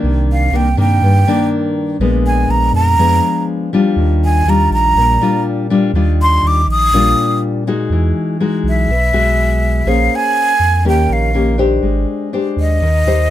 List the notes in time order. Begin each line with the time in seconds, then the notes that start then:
Already playing: D#3 A#3 D4
0.03 C2 C3
0.32 F5
0.52 C2 D#3 A#3 D4
0.56 G5
0.77 G2 D#3 A#3 D4 G5
1.01 G2
1.28 D#3 A#3 D4
1.99 A#1 A#2 G#3 B3 D4
2.27 G#5
2.48 A#1 A#5
2.73 F2 A#5
2.97 F2 F3 G#3 B3 D4
3.73 G3 D4 F4
3.96 D#2 D#3
4.25 G#5
4.45 D#2 G3 D4 F4
4.49 A#5
4.70 A#1 A#5
4.95 A#1 A#2
5.21 G3 D4 F4
5.70 G3 D4 F4
5.93 D#2 D#3 G3 D4 F4
6.22 C6
6.43 D#2
6.47 D6
6.67 A#1 D#6
6.91 A#1 A#2 G3 D4 F4
7.67 G#3 D#4 F#4
7.90 E2 E3
8.40 G#3 D#4 F#4
8.63 B1
8.69 E5
8.88 B1 B2
9.12 B1 G#3 F#4
9.86 A#1 A#3 C#4 G#4 C5 F5
10.15 G#5
10.59 F2
10.84 D#2 D#3 A#3 C#4 G4
10.89 G5
11.09 A#1 F5
11.34 A#3 C#4 G4
11.58 D4 G4 C5
11.82 G#1 G#3
12.33 D4 G4 C5
12.56 D#2 D#5
12.81 D#2 D#3
13.05 D#2 G4 C5